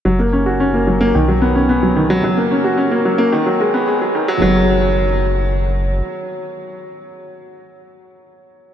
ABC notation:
X:1
M:4/4
L:1/16
Q:1/4=110
K:F#
V:1 name="Upright piano" clef=bass
F, A, C F C A, F, A, D, F, B, C B, F, D, F, | F, A, C F C A, F, A, D, F, G, B, G, F, D, F, | F,2 z12 z2 | z16 |]
V:2 name="Analog synth bass" clef=bass
F,,,8 B,,,8 | F,,,8 G,,,8 | F,,,12 z4 | z16 |]